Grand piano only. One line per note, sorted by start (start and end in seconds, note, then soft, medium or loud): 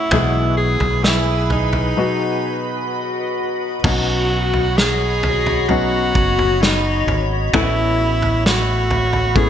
0.00 0.13 F#3 medium
0.00 0.13 A3 medium
0.00 0.14 C#4 soft
0.00 0.14 F#4 medium
0.12 1.47 B2 medium
0.12 1.88 E3 medium
0.12 1.88 G#3 medium
0.12 1.88 B3 medium
0.12 1.88 G#4 medium
1.97 3.34 B2 medium
1.97 3.75 F#3 medium
1.97 3.76 B3 medium
1.97 3.76 D#4 medium
1.97 3.76 F#4 medium
3.84 5.60 F#3 medium
3.84 5.60 B3 medium
3.84 5.60 C#4 medium
3.84 5.60 D#4 medium
5.69 7.44 F#3 medium
5.69 7.44 B3 medium
5.69 7.45 C#4 medium
5.69 7.45 D#4 medium
7.53 9.27 A3 medium
7.53 9.27 B3 medium
7.53 9.28 C#4 medium
7.53 9.28 E4 medium
9.35 9.50 A3 medium
9.35 9.50 B3 medium
9.35 9.50 C#4 medium
9.35 9.50 E4 medium